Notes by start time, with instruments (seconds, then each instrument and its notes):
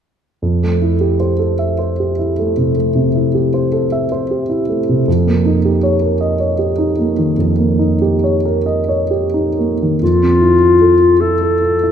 0.42 grand piano F2
0.63 grand piano A3
0.82 grand piano E4
1.01 grand piano G4
1.20 grand piano C5
1.39 grand piano A4
1.59 grand piano E5
1.79 grand piano C5
2.00 grand piano G4
2.19 grand piano E4
2.39 grand piano A3
2.57 grand piano C3
2.77 grand piano A3
2.96 grand piano C3
3.15 grand piano E4
3.35 grand piano G4
3.54 grand piano C5
3.72 grand piano A4
3.92 grand piano E5
4.12 grand piano C5
4.31 grand piano G4
4.49 grand piano E4
4.69 grand piano A3
4.89 grand piano C3
5.08 grand piano F2
5.27 grand piano A#3
5.45 grand piano D#4
5.65 grand piano G4
5.83 grand piano C#5
6.02 grand piano A#4
6.21 grand piano D#5
6.40 grand piano C#5
6.59 grand piano G4
6.78 grand piano D#4
6.99 grand piano A#3
7.18 grand piano D#3
7.38 grand piano F2
7.58 grand piano A#3
7.79 grand piano D#4
8.02 grand piano G4
8.24 grand piano C#5
8.45 grand piano A#4
8.66 grand piano D#5
8.89 grand piano C#5
9.11 grand piano G4
9.34 grand piano D#4
9.58 grand piano A#3
9.82 grand piano D#3
10.02 grand piano F2, clarinet F4
10.23 grand piano C4
10.42 grand piano E4
10.62 grand piano F4
10.81 grand piano A4
11.01 grand piano F4
11.21 grand piano E4, clarinet A4
11.41 grand piano A4
11.62 grand piano F4
11.83 grand piano E4